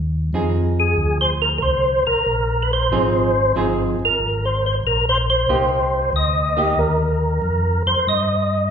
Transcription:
Already playing: tonewheel organ D#2
0.33 tonewheel organ F2, hollow-body jazz guitar F3 C4 D#4 G#4
0.80 tonewheel organ G#4
0.97 tonewheel organ D2
1.21 tonewheel organ C5
1.42 tonewheel organ A#4
1.58 tonewheel organ C2 A#4 C5
2.07 tonewheel organ C2 A#4
2.26 tonewheel organ A#1
2.63 tonewheel organ B4
2.73 tonewheel organ C5
2.91 tonewheel organ G#1, hollow-body jazz guitar F3 C4 D#4 G#4
3.55 tonewheel organ G1, hollow-body jazz guitar F3 C4 D#4 G#4
3.99 tonewheel organ G1
4.05 tonewheel organ A#4
4.19 tonewheel organ G#1
4.45 tonewheel organ C5
4.66 tonewheel organ C5
4.83 tonewheel organ A#1 A#4
5.09 tonewheel organ C5
5.30 tonewheel organ C5
5.48 tonewheel organ C2, hollow-body jazz guitar A#3 D#4 G4
6.13 tonewheel organ D2 D#5
6.57 hollow-body jazz guitar A#3 D#4 G4
6.77 tonewheel organ D#2 A#4
7.42 tonewheel organ F2
7.86 tonewheel organ F2 C5
8.07 tonewheel organ G2 D#5

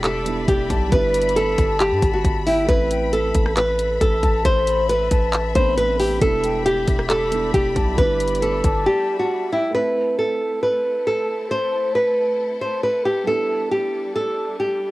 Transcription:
Already playing: 808-style bass E1, felt piano G3 B3 D4 E4, string section G3 D5 E5 B5
0.04 nylon-string guitar A4, clap, closed hi-hat
0.24 felt piano G3 B3 D4 E4, closed hi-hat
0.48 808-style bass E1, nylon-string guitar G4, kick, closed hi-hat
0.70 808-style bass B1, flute A5, kick, closed hi-hat
0.88 808-style bass G1, felt piano G3 B3, nylon-string guitar B4, kick, closed hi-hat
0.93 felt piano D4 E4
1.14 flute B5, closed hi-hat
1.22 closed hi-hat
1.29 closed hi-hat
1.36 nylon-string guitar A4, closed hi-hat
1.58 808-style bass G1, flute A5, kick, closed hi-hat
1.80 nylon-string guitar G4, clap, closed hi-hat
1.91 808-style bass G2
2.02 808-style bass G1, kick, closed hi-hat
2.13 nylon-string guitar F#4
2.25 808-style bass G1, kick, closed hi-hat
2.46 nylon-string guitar E4, flute G5, open hi-hat
2.65 felt piano A3
2.69 808-style bass A1, felt piano C4 E4, string section A4 E5, nylon-string guitar B4, kick, closed hi-hat
2.91 flute G5, closed hi-hat
3.13 nylon-string guitar A4, closed hi-hat
3.35 808-style bass A1, kick, closed hi-hat
3.46 cross-stick
3.57 nylon-string guitar B4, clap, closed hi-hat
3.79 closed hi-hat
4.01 808-style bass A1, nylon-string guitar A4, kick, closed hi-hat
4.23 808-style bass A1, flute A5, kick, closed hi-hat
4.45 808-style bass A1, nylon-string guitar C5, kick, closed hi-hat
4.67 flute B5, closed hi-hat
4.89 nylon-string guitar B4, closed hi-hat
5.11 808-style bass A1, flute A5, kick, closed hi-hat
5.33 clap, closed hi-hat
5.54 808-style bass A1, felt piano A3 B3 C4 D4, nylon-string guitar C5, flute B5, kick, closed hi-hat
5.77 nylon-string guitar B4, closed hi-hat
6.00 nylon-string guitar G4, open hi-hat
6.18 808-style bass E1, felt piano G3 B3, string section G4 D5 B5, nylon-string guitar A4, kick, closed hi-hat
6.23 felt piano D4 E4
6.44 flute G5, closed hi-hat
6.66 nylon-string guitar G4, closed hi-hat
6.88 808-style bass E1, kick, closed hi-hat
6.99 cross-stick
7.10 nylon-string guitar A4, clap, closed hi-hat
7.30 felt piano G3 B3 D4 E4, closed hi-hat
7.54 808-style bass E1, nylon-string guitar G4, kick, closed hi-hat
7.76 808-style bass B1, flute A5, kick, closed hi-hat
7.94 808-style bass G1, felt piano G3 B3, nylon-string guitar B4, kick, closed hi-hat
7.98 string section G3, felt piano D4 E4
8.20 flute B5, closed hi-hat
8.28 closed hi-hat
8.35 closed hi-hat
8.42 nylon-string guitar A4, closed hi-hat
8.64 808-style bass G1, flute A5, kick, closed hi-hat
8.86 nylon-string guitar G4
9.19 nylon-string guitar F#4
9.52 nylon-string guitar E4, flute G5
9.71 felt piano A3, string section A3 C4 E4 A4, nylon-string guitar B4
9.76 felt piano C4 E4
10.19 nylon-string guitar A4
10.63 nylon-string guitar B4
11.07 nylon-string guitar A4
11.51 nylon-string guitar C5
11.95 nylon-string guitar B4
12.61 nylon-string guitar C5
12.83 nylon-string guitar B4
13.05 nylon-string guitar G4
13.24 felt piano G3 B3, string section G3 D4, nylon-string guitar A4
13.29 felt piano D4 E4
13.71 nylon-string guitar G4
14.16 nylon-string guitar A4
14.60 nylon-string guitar G4

